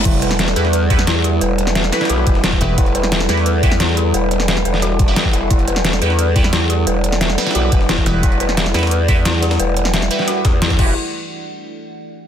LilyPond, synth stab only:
\new Staff \with { instrumentName = "Synth stab" } { \time 4/4 \key e \minor \tempo 4 = 176 <e' fis' g' b'>4. <e' fis' g' b'>16 r8. <e' fis' g' b'>16 r4 r16 | r4. <e' fis' g' b'>4~ <e' fis' g' b'>16 r8. <e' fis' g' b'>8~ | <e' fis' g' b'>4. <e' fis' g' b'>16 r8. <e' fis' g' b'>16 r4 r16 | r2 r8. <e' fis' g' b'>4~ <e' fis' g' b'>16~ |
<e' fis' g' b'>4. <e' fis' g' b'>16 r8. <e' fis' g' b'>16 r4 r16 | r4. <e' fis' g' b'>4~ <e' fis' g' b'>16 r8. <e' fis' g' b'>8~ | <e' fis' g' b'>4. <e' fis' g' b'>16 r8. <e' fis' g' b'>16 r4 r16 | r4. <e' fis' g' b'>4~ <e' fis' g' b'>16 r8. <e' fis' g' b'>8 |
r1 | }